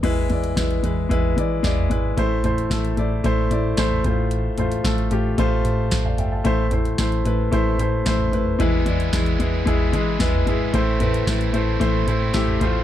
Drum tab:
CC |x---------------|----------------|----------------|----------------|
HH |x-xxxxx-x-x-x-x-|x-xxxxx-x-x-x-x-|x-xxxxx-x-x-x-x-|x-xxxxx-x-x-x-x-|
SD |----o-------o---|----o-------o---|----o-------o---|----o-------o---|
FT |--o----------oo-|--o----------oo-|--o----------oo-|--o----------oo-|
BD |o---o---o---o---|o---o---o---o-o-|----o---o---o---|o---o---o---o---|

CC |----------------|----------------|
HH |x-xxxxx-x-x-x-x-|x-xxxxx-x-x-x-x-|
SD |----o-------o---|----o-------o---|
FT |--o----------oo-|--o----------oo-|
BD |o---o---o---o---|o---o---o---o-o-|